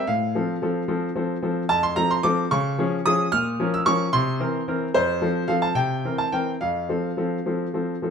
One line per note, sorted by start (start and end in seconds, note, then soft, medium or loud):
0.07 0.34 A2 medium
0.07 0.88 F5 medium
0.35 0.55 F3 soft
0.35 0.55 C4 soft
0.35 0.55 A4 medium
0.62 0.82 F3 soft
0.62 0.82 C4 medium
0.62 0.82 A4 medium
0.88 1.08 F3 medium
0.88 1.08 C4 medium
0.88 1.08 A4 medium
1.15 1.35 F3 soft
1.15 1.35 C4 medium
1.15 1.36 A4 medium
1.42 1.62 F3 medium
1.42 1.62 C4 medium
1.42 1.62 A4 medium
1.69 1.96 F2 medium
1.69 1.83 A5 loud
1.83 1.97 C6 loud
1.96 2.16 F3 medium
1.96 2.16 C4 medium
1.96 2.16 A4 medium
1.96 2.10 A#5 loud
2.11 2.24 C6 medium
2.23 2.43 F3 medium
2.23 2.44 C4 medium
2.23 2.44 A4 medium
2.23 2.48 D6 loud
2.51 2.78 C#3 medium
2.51 3.05 C#6 loud
2.78 2.98 F3 medium
2.78 2.98 C#4 medium
2.78 2.99 G#4 medium
3.06 3.25 F3 medium
3.06 3.25 C#4 medium
3.06 3.26 G#4 medium
3.06 3.32 D#6 loud
3.32 3.58 A#2 medium
3.32 3.73 F6 loud
3.60 3.79 F3 medium
3.60 3.79 C#4 medium
3.60 3.79 A#4 medium
3.74 3.87 E6 loud
3.86 4.06 F3 medium
3.86 4.06 C#4 medium
3.86 4.06 A#4 medium
3.86 4.13 C#6 loud
4.13 4.39 C3 medium
4.13 4.62 C6 loud
4.40 4.59 E3 medium
4.40 4.60 C4 medium
4.40 4.60 A#4 medium
4.68 4.87 E3 medium
4.68 4.87 C4 medium
4.68 4.88 A#4 medium
4.94 5.22 F2 medium
4.94 5.50 C5 loud
5.21 5.42 F3 medium
5.21 5.42 C4 medium
5.21 5.42 A4 medium
5.48 5.69 F3 medium
5.48 5.69 C4 medium
5.48 5.69 A4 medium
5.48 5.63 F5 medium
5.62 5.77 A5 medium
5.75 6.03 C3 medium
5.75 6.14 G5 loud
6.04 6.25 E3 soft
6.04 6.25 C4 soft
6.04 6.26 A#4 medium
6.18 6.33 A5 medium
6.32 6.53 E3 soft
6.32 6.53 C4 soft
6.32 6.54 A#4 medium
6.32 6.50 G5 medium
6.61 6.89 F2 medium
6.61 7.97 F5 medium
6.89 7.09 F3 soft
6.89 7.10 C4 soft
6.89 7.10 A4 medium
7.17 7.37 F3 soft
7.17 7.38 C4 soft
7.17 7.38 A4 medium
7.46 7.66 F3 soft
7.46 7.66 C4 soft
7.46 7.67 A4 soft
7.74 7.94 F3 soft
7.74 7.94 C4 soft
7.74 7.95 A4 soft
8.02 8.10 F3 soft
8.02 8.10 C4 soft
8.02 8.10 A4 soft